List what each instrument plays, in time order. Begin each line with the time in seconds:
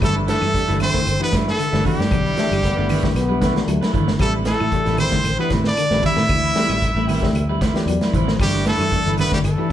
0.00 fingered electric bass G1, reed electric piano E3 A3 D4 G4, clean electric guitar G3 A3 D4 E4 B4, tenor saxophone A3, trumpet A4, kick, closed hi-hat, claves
0.14 clean electric guitar D4 E4 B4
0.27 clean electric guitar A3 D4 E4 B4, tenor saxophone A3, trumpet A4, snare, closed hi-hat, high conga
0.42 fingered electric bass G2, clean electric guitar E3, snare, claves
0.54 reed electric piano E3 A3 D4 G4, kick, closed hi-hat
0.68 fingered electric bass G1, clean electric guitar E3 D4 E4 B4, snare, closed hi-hat, high conga
0.80 clean electric guitar A3 D4 E4 B4, tenor saxophone C4, trumpet C5, open hi-hat, low conga, claves
0.94 clean electric guitar D3, kick, snare, closed hi-hat
1.07 fingered electric bass G1, closed hi-hat, high conga, claves
1.18 reed electric piano E3 A3 D4 G4, clean electric guitar E3 D4 E4 B4, tenor saxophone B3
1.24 trumpet B4
1.32 fingered electric bass G2, clean electric guitar A3 D4 E4 B4, kick, snare, closed hi-hat, high conga
1.48 tenor saxophone A3, trumpet A4, snare
1.58 clean electric guitar D3, closed hi-hat, claves
1.71 fingered electric bass G1, reed electric piano E3 A3 D4 G4, clean electric guitar D4 E4 B4, snare, high conga
1.84 clean electric guitar E3 A3 D4 E4 B4, trumpet G4, kick, open hi-hat, low conga
1.88 tenor saxophone G3
1.99 fingered electric bass G2, snare
2.11 fingered electric bass B1, clean electric guitar D3, kick, snare, closed hi-hat, high conga, claves
2.25 clean electric guitar D4 E4 B4, closed hi-hat
2.37 reed electric piano E3 A3 D4 G4, clean electric guitar A3 D4 E4, trombone section A3, snare, closed hi-hat, high conga
2.51 fingered electric bass G1, clean electric guitar G3, closed hi-hat, claves
2.63 trombone section B3, kick, snare, closed hi-hat
2.76 fingered electric bass G1, clean electric guitar A3 D4 E4 B4, high conga
2.89 clean electric guitar A3 D4 E4 B4, open hi-hat, low conga, claves
3.02 reed electric piano E3 A3 D4 G4, clean electric guitar A3, kick, snare
3.15 fingered electric bass B1, trombone section B3, snare, closed hi-hat, high conga, claves
3.29 clean electric guitar G3 D4 E4 B4
3.41 clean electric guitar A3 D4 E4 B4, kick, snare, closed hi-hat, high conga, low conga
3.54 reed electric piano E3 A3 D4 G4, snare, closed hi-hat
3.66 fingered electric bass D2, clean electric guitar F#3, trombone section A3, closed hi-hat, claves
3.81 clean electric guitar D4 E4 B4, snare, closed hi-hat, high conga
3.93 fingered electric bass G1, clean electric guitar E3 A3 D4 E4 B4, kick, closed hi-hat, low conga
4.08 snare
4.19 fingered electric bass A1, reed electric piano E3 A3 D4 G4, clean electric guitar G3 C4 E4 B4, tenor saxophone A3, trumpet A4, kick, closed hi-hat, high conga, claves
4.33 clean electric guitar C4 E4 B4
4.45 clean electric guitar G3 E4 B4, tenor saxophone A3, trumpet A4, snare, closed hi-hat, high conga
4.60 fingered electric bass A2, clean electric guitar E3, claves
4.72 reed electric piano E3 A3 D4 G4, kick, closed hi-hat
4.86 fingered electric bass A1, clean electric guitar E3 C4 E4 B4, snare, closed hi-hat, high conga
4.97 clean electric guitar G3 C4 E4 B4, tenor saxophone C4, trumpet C5, open hi-hat, low conga, claves
5.11 clean electric guitar D3, kick, snare, closed hi-hat, high conga
5.24 fingered electric bass A1, closed hi-hat, high conga, claves
5.38 reed electric piano E3 A3 D4 G4, clean electric guitar E3 C4 E4 B4, tenor saxophone B3, trumpet B4
5.50 fingered electric bass A2, clean electric guitar G3 C4 E4 B4, kick, snare, closed hi-hat, high conga, low conga
5.64 tenor saxophone D4, trumpet D5, snare
5.77 clean electric guitar D3, closed hi-hat, claves
5.90 fingered electric bass A1, reed electric piano E3 A3 D4 G4, clean electric guitar C4 E4 B4, snare, high conga
6.02 clean electric guitar E3 G3 C4 E4 B4, tenor saxophone E4, trumpet E5, kick, open hi-hat, low conga
6.17 fingered electric bass A2, snare
6.29 fingered electric bass D2, clean electric guitar E3, kick, closed hi-hat, high conga, claves
6.44 clean electric guitar C4 E4 B4, closed hi-hat
6.54 reed electric piano E3 A3 D4 G4, clean electric guitar G3 C4 E4 B4, snare, closed hi-hat, high conga
6.69 fingered electric bass A1, clean electric guitar G3, snare, closed hi-hat, claves
6.82 kick, snare, closed hi-hat
6.95 fingered electric bass A1, clean electric guitar A3 C4 E4 B4, high conga
7.07 clean electric guitar G3 C4 E4 B4, reed electric piano G5, open hi-hat, low conga, claves
7.20 reed electric piano E3 A3 D4 G4, clean electric guitar A3, kick, snare
7.33 fingered electric bass D2, reed electric piano E5, closed hi-hat, high conga, claves
7.49 clean electric guitar G3 C4 E4 B4
7.61 clean electric guitar G3 C4 E4 B4, kick, snare, closed hi-hat, high conga
7.74 reed electric piano E3 A3 D4 G4, snare, closed hi-hat
7.86 fingered electric bass E2, clean electric guitar F#3, reed electric piano D5, closed hi-hat, claves
8.01 clean electric guitar C4 E4 B4, snare, closed hi-hat, high conga
8.13 fingered electric bass A1, clean electric guitar E3 G3 C4 E4 B4, reed electric piano C5, kick, closed hi-hat, low conga
8.28 snare
8.39 fingered electric bass G1, reed electric piano E3 A3 D4 G4, tenor saxophone G3, clean electric guitar G3 A3 D4 E4, trumpet G4, muted clean electric guitar stroke, kick, closed hi-hat, high conga, claves
8.54 clean electric guitar D4 E4 B4, snare
8.65 clean electric guitar A3 D4 E4 B4, tenor saxophone A3, trumpet A4, snare, closed hi-hat, high conga
8.79 fingered electric bass G2, clean electric guitar E3, snare, claves
8.91 reed electric piano E3 A3 D4 A4, kick, closed hi-hat
9.06 fingered electric bass G1, clean electric guitar E3 D4 E4 B4, closed hi-hat, high conga
9.17 clean electric guitar A3 D4 E4 B4, tenor saxophone B3, trumpet B4, open hi-hat, low conga, claves
9.32 clean electric guitar D3, tenor saxophone G3, trumpet G4, kick, snare, closed hi-hat, high conga
9.43 fingered electric bass G1, tenor saxophone A3, trumpet A4, closed hi-hat, high conga, claves
9.56 reed electric piano E3 A3 D4 G4, clean electric guitar E3 D4 E4 B4